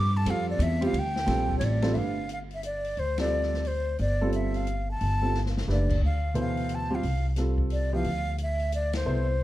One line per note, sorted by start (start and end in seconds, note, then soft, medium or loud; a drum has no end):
0.00 0.25 G2 medium
0.00 0.18 D6 loud
0.17 0.32 A5 loud
0.26 0.58 F2 medium
0.26 0.78 G3 medium
0.26 0.78 C4 medium
0.26 0.78 F4 medium
0.26 0.78 A4 medium
0.26 hi-hat pedal medium
0.26 ride medium
0.30 0.50 F5 medium
0.50 0.64 D5 medium
0.59 0.92 E2 loud
0.59 0.83 E5 medium
0.59 hi-hat pedal medium
0.59 ride medium
0.81 0.93 G3 medium
0.81 0.93 C4 medium
0.81 0.93 F4 medium
0.81 0.93 G4 medium
0.81 ride medium
0.85 1.01 F5 loud
0.93 1.26 D2 loud
0.93 ride medium
0.99 1.58 G5 loud
1.16 snare medium
1.26 1.60 A#1 loud
1.26 1.78 G3 medium
1.26 1.78 C4 medium
1.26 1.78 F4 medium
1.26 1.78 A4 medium
1.26 snare soft
1.26 ride medium
1.49 kick medium
1.59 1.94 A1 loud
1.59 1.66 C#5 medium
1.59 hi-hat pedal medium
1.59 ride medium
1.64 1.96 D5 medium
1.82 1.94 G3 medium
1.82 1.94 C4 medium
1.82 1.94 F4 medium
1.82 1.94 A4 medium
1.82 snare medium
1.82 ride medium
1.94 2.93 G1 medium
1.94 2.14 A3 medium
1.94 2.14 D4 medium
1.94 2.14 G4 medium
1.94 2.15 B4 medium
1.94 1.99 E5 medium
1.94 2.31 F5 medium
1.94 open hi-hat soft
2.29 2.39 F5 medium
2.29 closed hi-hat medium
2.51 2.64 E5 medium
2.51 open hi-hat soft
2.63 3.01 D5 medium
2.63 closed hi-hat medium
2.84 open hi-hat soft
2.97 3.95 D2 medium
2.97 3.20 C5 medium
2.97 open hi-hat soft
3.18 3.62 G3 medium
3.18 3.62 C4 medium
3.18 3.63 F4 medium
3.18 3.62 A4 medium
3.18 3.69 D5 medium
3.18 snare medium
3.18 ride medium
3.42 snare soft
3.54 snare soft
3.65 4.00 C5 medium
3.65 open hi-hat soft
3.98 4.97 G1 medium
3.98 4.31 D5 medium
3.98 open hi-hat soft
4.21 4.64 G3 medium
4.21 4.65 C4 medium
4.21 4.65 F4 medium
4.21 4.64 A4 medium
4.32 4.57 E5 medium
4.32 closed hi-hat soft
4.54 4.89 F5 medium
4.54 open hi-hat soft
4.67 closed hi-hat soft
4.91 5.41 A5 loud
5.01 5.64 G1 medium
5.01 open hi-hat soft
5.22 5.33 G3 medium
5.22 5.33 C4 medium
5.22 5.33 F4 medium
5.22 5.33 A4 medium
5.34 snare soft
5.46 snare medium
5.57 snare medium
5.68 5.99 F#1 medium
5.68 5.87 A3 medium
5.68 5.87 D4 medium
5.68 5.87 G4 medium
5.68 5.87 B4 medium
5.68 snare medium
5.72 6.04 D5 medium
5.90 kick medium
5.90 crash medium
6.01 6.99 D2 medium
6.05 6.35 F5 medium
6.34 6.86 B2 medium
6.34 6.86 E3 medium
6.34 6.86 A4 medium
6.34 6.86 C5 medium
6.34 closed hi-hat soft
6.41 6.76 F5 medium
6.57 open hi-hat soft
6.69 closed hi-hat soft
6.75 6.96 A5 medium
6.90 7.02 G3 medium
6.90 7.02 C4 medium
6.90 7.02 F4 medium
6.90 7.02 G4 medium
6.95 7.27 F5 medium
7.03 8.01 C2 medium
7.03 open hi-hat soft
7.36 7.88 G3 medium
7.36 7.89 C4 medium
7.36 7.88 F4 medium
7.36 7.89 A4 medium
7.36 snare soft
7.36 closed hi-hat medium
7.58 kick soft
7.70 7.92 D5 medium
7.70 open hi-hat soft
7.93 8.04 F3 medium
7.93 8.04 B3 medium
7.93 8.04 E4 medium
7.93 8.04 G4 medium
7.93 8.37 F5 loud
8.04 9.02 D2 medium
8.04 open hi-hat soft
8.38 closed hi-hat medium
8.43 8.72 E5 medium
8.59 open hi-hat soft
8.72 8.94 D5 medium
8.72 closed hi-hat soft
8.93 9.43 C5 medium
8.93 snare medium
8.93 ride medium
9.05 9.43 C2 medium
9.05 9.25 B3 medium
9.05 9.25 E4 medium
9.05 9.25 A4 medium
9.05 9.26 C5 medium